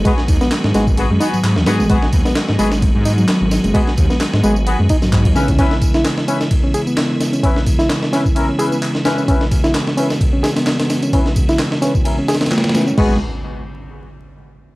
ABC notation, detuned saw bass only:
X:1
M:4/4
L:1/16
Q:"Swing 16ths" 1/4=130
K:G#m
V:1 name="Detuned saw bass" clef=bass
z2 D,, z2 G,, G,,,3 F,, z G,, G,, D,, G,, G,,, | G,,,2 D,, z2 G,, G,,,3 G,,3 z G,,,2 F,,, | z2 D,, z2 G,, G,,,3 F,, z G,, G,, D,, C, C,, | z16 |
z16 | z16 | z16 | G,,,2 z12 z2 |]